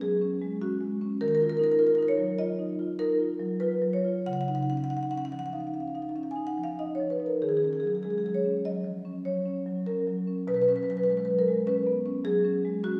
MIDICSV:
0, 0, Header, 1, 2, 480
1, 0, Start_track
1, 0, Key_signature, -6, "minor"
1, 0, Tempo, 596421
1, 972, Time_signature, 5, 2, 24, 8
1, 2898, Tempo, 655738
1, 3858, Tempo, 628272
1, 6258, Tempo, 606673
1, 8658, Tempo, 586510
1, 10223, End_track
2, 0, Start_track
2, 0, Title_t, "Marimba"
2, 0, Program_c, 0, 12
2, 0, Note_on_c, 0, 47, 47
2, 0, Note_on_c, 0, 61, 41
2, 10, Note_on_c, 0, 68, 73
2, 13, Note_on_c, 0, 54, 38
2, 107, Note_off_c, 0, 61, 0
2, 171, Note_on_c, 0, 61, 47
2, 266, Note_off_c, 0, 54, 0
2, 335, Note_on_c, 0, 56, 44
2, 426, Note_off_c, 0, 61, 0
2, 468, Note_off_c, 0, 68, 0
2, 495, Note_on_c, 0, 61, 43
2, 495, Note_on_c, 0, 66, 72
2, 589, Note_off_c, 0, 56, 0
2, 649, Note_on_c, 0, 56, 46
2, 751, Note_off_c, 0, 61, 0
2, 817, Note_on_c, 0, 61, 46
2, 907, Note_off_c, 0, 56, 0
2, 938, Note_off_c, 0, 47, 0
2, 955, Note_off_c, 0, 66, 0
2, 973, Note_on_c, 0, 70, 80
2, 975, Note_off_c, 0, 61, 0
2, 976, Note_on_c, 0, 51, 53
2, 1029, Note_off_c, 0, 70, 0
2, 1029, Note_on_c, 0, 70, 62
2, 1085, Note_off_c, 0, 70, 0
2, 1085, Note_on_c, 0, 70, 66
2, 1134, Note_on_c, 0, 65, 42
2, 1146, Note_off_c, 0, 70, 0
2, 1146, Note_on_c, 0, 70, 62
2, 1203, Note_off_c, 0, 70, 0
2, 1203, Note_on_c, 0, 70, 71
2, 1263, Note_off_c, 0, 70, 0
2, 1263, Note_on_c, 0, 70, 64
2, 1282, Note_on_c, 0, 63, 46
2, 1316, Note_off_c, 0, 70, 0
2, 1316, Note_on_c, 0, 70, 72
2, 1381, Note_off_c, 0, 70, 0
2, 1381, Note_on_c, 0, 70, 64
2, 1383, Note_off_c, 0, 65, 0
2, 1440, Note_off_c, 0, 70, 0
2, 1440, Note_on_c, 0, 70, 73
2, 1442, Note_on_c, 0, 65, 40
2, 1503, Note_off_c, 0, 70, 0
2, 1503, Note_on_c, 0, 70, 65
2, 1537, Note_off_c, 0, 63, 0
2, 1569, Note_off_c, 0, 70, 0
2, 1569, Note_on_c, 0, 70, 65
2, 1595, Note_on_c, 0, 63, 43
2, 1602, Note_off_c, 0, 65, 0
2, 1630, Note_off_c, 0, 70, 0
2, 1630, Note_on_c, 0, 70, 66
2, 1655, Note_off_c, 0, 70, 0
2, 1677, Note_on_c, 0, 73, 69
2, 1753, Note_on_c, 0, 54, 42
2, 1857, Note_off_c, 0, 63, 0
2, 1913, Note_off_c, 0, 73, 0
2, 1920, Note_on_c, 0, 65, 46
2, 1920, Note_on_c, 0, 75, 69
2, 2019, Note_off_c, 0, 54, 0
2, 2084, Note_on_c, 0, 63, 41
2, 2184, Note_off_c, 0, 65, 0
2, 2247, Note_on_c, 0, 65, 47
2, 2249, Note_off_c, 0, 63, 0
2, 2389, Note_off_c, 0, 75, 0
2, 2407, Note_on_c, 0, 63, 47
2, 2407, Note_on_c, 0, 70, 84
2, 2506, Note_off_c, 0, 65, 0
2, 2571, Note_on_c, 0, 65, 46
2, 2666, Note_off_c, 0, 63, 0
2, 2732, Note_on_c, 0, 54, 45
2, 2832, Note_off_c, 0, 65, 0
2, 2877, Note_off_c, 0, 70, 0
2, 2897, Note_on_c, 0, 71, 69
2, 2901, Note_on_c, 0, 65, 47
2, 2991, Note_off_c, 0, 54, 0
2, 3055, Note_on_c, 0, 54, 43
2, 3127, Note_off_c, 0, 71, 0
2, 3141, Note_on_c, 0, 73, 64
2, 3154, Note_off_c, 0, 65, 0
2, 3223, Note_on_c, 0, 65, 39
2, 3319, Note_off_c, 0, 54, 0
2, 3357, Note_off_c, 0, 51, 0
2, 3377, Note_off_c, 0, 73, 0
2, 3383, Note_on_c, 0, 49, 56
2, 3383, Note_on_c, 0, 78, 78
2, 3386, Note_off_c, 0, 65, 0
2, 3432, Note_off_c, 0, 78, 0
2, 3432, Note_on_c, 0, 78, 61
2, 3488, Note_off_c, 0, 78, 0
2, 3488, Note_on_c, 0, 78, 66
2, 3543, Note_off_c, 0, 78, 0
2, 3543, Note_on_c, 0, 78, 59
2, 3544, Note_on_c, 0, 63, 39
2, 3592, Note_off_c, 0, 78, 0
2, 3592, Note_on_c, 0, 78, 69
2, 3648, Note_off_c, 0, 78, 0
2, 3648, Note_on_c, 0, 78, 61
2, 3700, Note_off_c, 0, 78, 0
2, 3700, Note_on_c, 0, 78, 70
2, 3705, Note_on_c, 0, 61, 35
2, 3756, Note_off_c, 0, 78, 0
2, 3756, Note_on_c, 0, 78, 60
2, 3796, Note_off_c, 0, 63, 0
2, 3804, Note_off_c, 0, 78, 0
2, 3804, Note_on_c, 0, 78, 71
2, 3850, Note_off_c, 0, 78, 0
2, 3850, Note_on_c, 0, 78, 65
2, 3859, Note_on_c, 0, 63, 34
2, 3900, Note_off_c, 0, 78, 0
2, 3900, Note_on_c, 0, 78, 66
2, 3946, Note_off_c, 0, 78, 0
2, 3946, Note_on_c, 0, 78, 59
2, 3956, Note_off_c, 0, 61, 0
2, 4008, Note_off_c, 0, 78, 0
2, 4008, Note_on_c, 0, 78, 70
2, 4019, Note_off_c, 0, 63, 0
2, 4021, Note_on_c, 0, 61, 35
2, 4059, Note_off_c, 0, 78, 0
2, 4059, Note_on_c, 0, 78, 66
2, 4116, Note_off_c, 0, 78, 0
2, 4116, Note_on_c, 0, 78, 67
2, 4170, Note_off_c, 0, 78, 0
2, 4170, Note_on_c, 0, 78, 63
2, 4174, Note_on_c, 0, 53, 36
2, 4223, Note_off_c, 0, 78, 0
2, 4223, Note_on_c, 0, 78, 70
2, 4274, Note_off_c, 0, 78, 0
2, 4274, Note_on_c, 0, 78, 64
2, 4275, Note_off_c, 0, 61, 0
2, 4306, Note_off_c, 0, 78, 0
2, 4329, Note_on_c, 0, 77, 52
2, 4330, Note_on_c, 0, 63, 40
2, 4385, Note_off_c, 0, 77, 0
2, 4385, Note_on_c, 0, 77, 41
2, 4431, Note_off_c, 0, 53, 0
2, 4437, Note_off_c, 0, 77, 0
2, 4437, Note_on_c, 0, 77, 44
2, 4488, Note_off_c, 0, 77, 0
2, 4488, Note_on_c, 0, 77, 42
2, 4494, Note_on_c, 0, 61, 31
2, 4538, Note_off_c, 0, 77, 0
2, 4538, Note_on_c, 0, 77, 44
2, 4588, Note_off_c, 0, 63, 0
2, 4594, Note_off_c, 0, 77, 0
2, 4594, Note_on_c, 0, 77, 40
2, 4648, Note_on_c, 0, 63, 38
2, 4652, Note_off_c, 0, 77, 0
2, 4652, Note_on_c, 0, 77, 44
2, 4654, Note_off_c, 0, 61, 0
2, 4706, Note_off_c, 0, 77, 0
2, 4706, Note_on_c, 0, 77, 43
2, 4759, Note_off_c, 0, 77, 0
2, 4759, Note_on_c, 0, 77, 42
2, 4805, Note_on_c, 0, 61, 35
2, 4809, Note_off_c, 0, 77, 0
2, 4809, Note_on_c, 0, 77, 41
2, 4866, Note_off_c, 0, 77, 0
2, 4866, Note_on_c, 0, 77, 44
2, 4904, Note_off_c, 0, 77, 0
2, 4905, Note_off_c, 0, 63, 0
2, 4925, Note_on_c, 0, 80, 63
2, 4964, Note_on_c, 0, 63, 43
2, 5046, Note_on_c, 0, 78, 66
2, 5048, Note_off_c, 0, 80, 0
2, 5064, Note_off_c, 0, 61, 0
2, 5132, Note_on_c, 0, 53, 36
2, 5169, Note_off_c, 0, 78, 0
2, 5174, Note_on_c, 0, 77, 65
2, 5225, Note_off_c, 0, 63, 0
2, 5292, Note_on_c, 0, 63, 39
2, 5293, Note_on_c, 0, 75, 60
2, 5294, Note_off_c, 0, 77, 0
2, 5391, Note_off_c, 0, 53, 0
2, 5415, Note_off_c, 0, 75, 0
2, 5415, Note_on_c, 0, 73, 59
2, 5454, Note_on_c, 0, 53, 35
2, 5531, Note_on_c, 0, 71, 52
2, 5537, Note_off_c, 0, 73, 0
2, 5553, Note_off_c, 0, 63, 0
2, 5607, Note_on_c, 0, 63, 31
2, 5654, Note_on_c, 0, 70, 50
2, 5656, Note_off_c, 0, 71, 0
2, 5716, Note_off_c, 0, 53, 0
2, 5750, Note_off_c, 0, 49, 0
2, 5773, Note_on_c, 0, 51, 50
2, 5774, Note_on_c, 0, 68, 64
2, 5775, Note_off_c, 0, 63, 0
2, 5778, Note_off_c, 0, 70, 0
2, 5826, Note_off_c, 0, 68, 0
2, 5826, Note_on_c, 0, 68, 53
2, 5887, Note_off_c, 0, 68, 0
2, 5887, Note_on_c, 0, 68, 58
2, 5929, Note_on_c, 0, 61, 33
2, 5945, Note_off_c, 0, 68, 0
2, 5945, Note_on_c, 0, 68, 49
2, 6009, Note_off_c, 0, 68, 0
2, 6009, Note_on_c, 0, 68, 55
2, 6063, Note_off_c, 0, 68, 0
2, 6063, Note_on_c, 0, 68, 53
2, 6090, Note_on_c, 0, 54, 35
2, 6119, Note_off_c, 0, 68, 0
2, 6119, Note_on_c, 0, 68, 53
2, 6178, Note_off_c, 0, 68, 0
2, 6178, Note_on_c, 0, 68, 52
2, 6190, Note_off_c, 0, 61, 0
2, 6238, Note_off_c, 0, 68, 0
2, 6238, Note_on_c, 0, 68, 57
2, 6247, Note_on_c, 0, 56, 34
2, 6298, Note_off_c, 0, 68, 0
2, 6298, Note_on_c, 0, 68, 51
2, 6351, Note_off_c, 0, 54, 0
2, 6357, Note_off_c, 0, 68, 0
2, 6357, Note_on_c, 0, 68, 52
2, 6407, Note_on_c, 0, 54, 31
2, 6414, Note_off_c, 0, 56, 0
2, 6421, Note_off_c, 0, 68, 0
2, 6421, Note_on_c, 0, 68, 54
2, 6468, Note_off_c, 0, 68, 0
2, 6488, Note_on_c, 0, 73, 52
2, 6572, Note_on_c, 0, 61, 37
2, 6669, Note_off_c, 0, 54, 0
2, 6723, Note_off_c, 0, 73, 0
2, 6731, Note_on_c, 0, 54, 38
2, 6732, Note_on_c, 0, 75, 64
2, 6831, Note_off_c, 0, 61, 0
2, 6883, Note_on_c, 0, 53, 35
2, 6989, Note_off_c, 0, 54, 0
2, 7047, Note_on_c, 0, 61, 37
2, 7049, Note_off_c, 0, 53, 0
2, 7194, Note_off_c, 0, 75, 0
2, 7206, Note_on_c, 0, 73, 61
2, 7209, Note_on_c, 0, 54, 36
2, 7309, Note_off_c, 0, 61, 0
2, 7367, Note_on_c, 0, 61, 42
2, 7471, Note_off_c, 0, 54, 0
2, 7531, Note_on_c, 0, 54, 38
2, 7631, Note_off_c, 0, 61, 0
2, 7675, Note_off_c, 0, 73, 0
2, 7691, Note_on_c, 0, 70, 59
2, 7692, Note_on_c, 0, 61, 38
2, 7792, Note_off_c, 0, 54, 0
2, 7857, Note_on_c, 0, 54, 41
2, 7951, Note_off_c, 0, 61, 0
2, 8013, Note_on_c, 0, 61, 38
2, 8113, Note_off_c, 0, 54, 0
2, 8142, Note_off_c, 0, 51, 0
2, 8154, Note_off_c, 0, 70, 0
2, 8173, Note_on_c, 0, 47, 56
2, 8175, Note_off_c, 0, 61, 0
2, 8176, Note_on_c, 0, 71, 75
2, 8228, Note_off_c, 0, 71, 0
2, 8228, Note_on_c, 0, 71, 58
2, 8285, Note_off_c, 0, 71, 0
2, 8285, Note_on_c, 0, 71, 65
2, 8337, Note_on_c, 0, 61, 41
2, 8342, Note_off_c, 0, 71, 0
2, 8342, Note_on_c, 0, 71, 60
2, 8398, Note_off_c, 0, 71, 0
2, 8398, Note_on_c, 0, 71, 63
2, 8453, Note_off_c, 0, 71, 0
2, 8453, Note_on_c, 0, 71, 59
2, 8500, Note_on_c, 0, 54, 38
2, 8510, Note_off_c, 0, 71, 0
2, 8510, Note_on_c, 0, 71, 66
2, 8565, Note_off_c, 0, 71, 0
2, 8565, Note_on_c, 0, 71, 63
2, 8595, Note_off_c, 0, 61, 0
2, 8617, Note_off_c, 0, 71, 0
2, 8617, Note_on_c, 0, 71, 66
2, 8654, Note_on_c, 0, 56, 36
2, 8670, Note_off_c, 0, 71, 0
2, 8670, Note_on_c, 0, 71, 57
2, 8727, Note_off_c, 0, 71, 0
2, 8727, Note_on_c, 0, 71, 61
2, 8758, Note_off_c, 0, 54, 0
2, 8791, Note_off_c, 0, 71, 0
2, 8791, Note_on_c, 0, 71, 57
2, 8818, Note_on_c, 0, 54, 40
2, 8820, Note_off_c, 0, 56, 0
2, 8872, Note_off_c, 0, 71, 0
2, 8903, Note_on_c, 0, 70, 67
2, 8977, Note_on_c, 0, 56, 43
2, 9077, Note_off_c, 0, 54, 0
2, 9132, Note_on_c, 0, 61, 50
2, 9133, Note_off_c, 0, 70, 0
2, 9136, Note_on_c, 0, 71, 72
2, 9235, Note_off_c, 0, 56, 0
2, 9296, Note_on_c, 0, 59, 38
2, 9391, Note_off_c, 0, 61, 0
2, 9451, Note_on_c, 0, 61, 51
2, 9456, Note_off_c, 0, 59, 0
2, 9596, Note_off_c, 0, 71, 0
2, 9605, Note_on_c, 0, 54, 47
2, 9608, Note_on_c, 0, 68, 80
2, 9710, Note_off_c, 0, 61, 0
2, 9769, Note_on_c, 0, 61, 46
2, 9868, Note_off_c, 0, 54, 0
2, 9938, Note_on_c, 0, 56, 48
2, 10031, Note_off_c, 0, 61, 0
2, 10075, Note_off_c, 0, 68, 0
2, 10090, Note_on_c, 0, 61, 50
2, 10093, Note_on_c, 0, 66, 78
2, 10194, Note_off_c, 0, 56, 0
2, 10223, Note_off_c, 0, 47, 0
2, 10223, Note_off_c, 0, 61, 0
2, 10223, Note_off_c, 0, 66, 0
2, 10223, End_track
0, 0, End_of_file